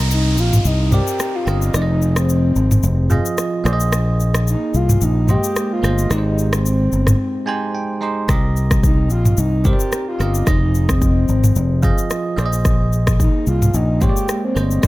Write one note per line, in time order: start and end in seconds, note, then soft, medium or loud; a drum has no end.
0.00 0.38 C2 loud
0.00 0.36 C4 medium
0.00 0.36 G4 medium
0.00 0.37 A#4 medium
0.00 0.37 D#5 loud
0.00 downlifter medium
0.11 0.41 D#4 loud
0.11 shaker medium
0.37 0.60 A#1 medium
0.37 0.68 F4 loud
0.37 shaker medium
0.53 mid tom medium
0.53 shaker medium
0.65 1.00 C2 medium
0.65 0.95 D#4 loud
0.65 shaker medium
0.91 1.33 C4 medium
0.91 1.34 G4 medium
0.91 1.37 G4 loud
0.91 1.34 A#4 medium
0.91 1.34 D5 medium
0.91 mid tom medium
0.91 shaker medium
1.07 shaker medium
1.20 cross-stick medium
1.20 shaker medium
1.35 1.77 F4 loud
1.46 1.69 G1 medium
1.46 1.67 C4 medium
1.46 1.68 G4 medium
1.46 1.68 A#4 medium
1.46 1.68 D#5 medium
1.46 cross-stick medium
1.46 shaker medium
1.62 shaker medium
1.73 2.52 F1 loud
1.73 2.54 F3 medium
1.73 1.90 D#4 loud
1.73 2.54 F4 medium
1.73 2.55 G#4 medium
1.73 1.82 D5 medium
1.73 cross-stick medium
1.73 shaker medium
1.82 2.58 D#5 medium
1.90 2.15 D#4 medium
2.02 shaker medium
2.16 3.62 C4 medium
2.16 cross-stick loud
2.16 shaker medium
2.29 shaker medium
2.56 2.78 G#1 medium
2.56 shaker medium
2.71 mid tom loud
2.71 shaker medium
2.83 3.18 F1 loud
2.83 shaker medium
3.09 3.51 F3 medium
3.09 3.52 F4 medium
3.09 3.52 G#4 medium
3.09 3.53 D#5 loud
3.09 mid tom medium
3.09 shaker soft
3.26 shaker medium
3.38 cross-stick medium
3.38 shaker medium
3.64 4.54 A#1 loud
3.64 4.52 A#3 loud
3.64 4.53 G#4 medium
3.64 4.53 C5 medium
3.64 3.73 D5 medium
3.64 cross-stick medium
3.64 shaker medium
3.73 4.57 D#5 loud
3.80 shaker medium
3.93 cross-stick loud
3.93 shaker medium
4.20 shaker medium
4.34 cross-stick loud
4.34 shaker medium
4.48 4.77 D#4 loud
4.48 shaker medium
4.74 4.97 C2 medium
4.74 5.05 F4 loud
4.74 shaker medium
4.89 mid tom medium
4.89 shaker medium
5.01 5.36 A#1 loud
5.01 5.32 D#4 loud
5.01 shaker medium
5.28 5.70 G#3 medium
5.28 5.69 A#3 medium
5.28 5.72 G4 loud
5.28 5.70 C5 medium
5.28 5.71 D#5 medium
5.28 mid tom medium
5.28 shaker medium
5.44 shaker medium
5.56 cross-stick medium
5.56 shaker medium
5.73 6.13 F4 loud
5.82 6.06 G1 medium
5.82 6.03 A#3 medium
5.82 6.04 G#4 medium
5.82 6.04 C5 medium
5.82 6.05 D#5 medium
5.82 cross-stick medium
5.82 shaker medium
5.98 shaker medium
6.09 6.88 G#1 loud
6.09 6.90 G#3 medium
6.09 6.91 D#4 medium
6.09 6.26 D#4 loud
6.09 6.91 G4 medium
6.09 6.18 B4 medium
6.09 cross-stick medium
6.09 shaker medium
6.18 6.95 C5 medium
6.27 6.52 D#4 medium
6.38 shaker medium
6.53 7.98 C4 medium
6.53 cross-stick loud
6.53 shaker medium
6.66 shaker medium
6.92 7.15 G1 medium
6.92 shaker medium
7.07 cross-stick medium
7.07 mid tom medium
7.07 shaker medium
7.46 7.88 G#3 medium
7.46 7.88 D#4 medium
7.46 7.89 G4 medium
7.46 7.89 C5 loud
7.46 7.73 G#5 medium
7.75 8.00 G5 medium
8.01 8.22 G#3 medium
8.01 8.22 D#4 medium
8.01 8.23 G4 medium
8.01 8.23 C5 medium
8.01 8.27 D#5 medium
8.28 9.11 C2 loud
8.28 9.09 C4 medium
8.28 9.09 G4 medium
8.28 9.09 A#4 medium
8.28 9.10 D#5 medium
8.28 kick loud
8.28 cross-stick loud
8.28 shaker medium
8.57 shaker medium
8.71 kick medium
8.71 cross-stick loud
8.71 shaker medium
8.83 9.09 D#4 loud
8.83 kick loud
8.83 shaker medium
9.10 9.33 A#1 medium
9.10 9.40 F4 loud
9.10 shaker medium
9.25 mid tom loud
9.25 shaker medium
9.37 9.72 C2 loud
9.37 9.65 D#4 loud
9.37 shaker medium
9.64 10.06 C4 medium
9.64 10.06 G4 medium
9.64 10.05 G4 loud
9.64 10.07 A#4 medium
9.64 9.73 C5 medium
9.64 kick medium
9.64 mid tom medium
9.64 shaker medium
9.73 10.10 D5 medium
9.80 shaker medium
9.92 cross-stick medium
9.92 shaker medium
10.08 10.49 F4 loud
10.19 10.42 G1 medium
10.19 10.40 C4 medium
10.19 10.40 G4 medium
10.19 10.41 A#4 medium
10.19 10.41 D#5 medium
10.19 cross-stick medium
10.19 shaker medium
10.35 shaker medium
10.46 11.25 F1 loud
10.46 11.27 F3 medium
10.46 10.62 D#4 loud
10.46 11.27 F4 medium
10.46 11.27 G#4 medium
10.46 11.28 D#5 medium
10.46 kick loud
10.46 cross-stick medium
10.46 shaker medium
10.63 10.92 D#4 medium
10.75 shaker medium
10.89 12.38 C4 medium
10.89 kick medium
10.89 cross-stick loud
10.89 shaker medium
11.02 kick medium
11.02 shaker medium
11.28 11.51 G#1 medium
11.28 shaker medium
11.44 mid tom loud
11.44 shaker medium
11.56 11.91 F1 loud
11.56 shaker medium
11.82 12.24 F3 medium
11.82 12.24 F4 medium
11.82 12.25 G#4 medium
11.82 12.25 D#5 loud
11.82 kick medium
11.82 mid tom medium
11.82 shaker medium
11.98 shaker medium
12.10 cross-stick medium
12.10 shaker medium
12.36 13.27 A#1 loud
12.36 13.25 A#3 medium
12.36 13.25 G#4 medium
12.36 13.26 C5 medium
12.36 12.46 D5 medium
12.36 cross-stick medium
12.36 shaker medium
12.46 13.30 D#5 loud
12.53 shaker medium
12.65 kick loud
12.65 cross-stick medium
12.65 shaker medium
12.93 shaker medium
13.07 kick medium
13.07 cross-stick loud
13.07 shaker medium
13.20 13.46 D#4 loud
13.20 kick medium
13.20 shaker medium
13.47 13.69 C2 medium
13.47 13.77 F4 loud
13.47 shaker medium
13.62 mid tom medium
13.62 shaker medium
13.74 14.09 A#1 loud
13.74 14.02 D#4 loud
13.74 shaker medium
14.00 14.43 G#3 medium
14.00 14.42 A#3 medium
14.00 14.41 G4 loud
14.00 14.43 C5 medium
14.00 14.09 C#5 medium
14.00 kick medium
14.00 mid tom medium
14.00 shaker soft
14.09 14.47 D5 medium
14.17 shaker medium
14.29 cross-stick medium
14.29 shaker medium
14.45 14.86 C4 loud
14.55 14.78 G1 medium
14.55 14.76 A#3 medium
14.55 14.77 G#4 medium
14.55 14.77 C5 medium
14.55 14.77 D#5 medium
14.55 cross-stick medium
14.55 shaker soft
14.71 shaker medium
14.82 14.87 G#1 loud
14.82 14.87 G#3 medium
14.82 14.87 D#4 medium
14.82 14.87 G4 medium
14.82 kick loud
14.82 cross-stick loud
14.82 shaker medium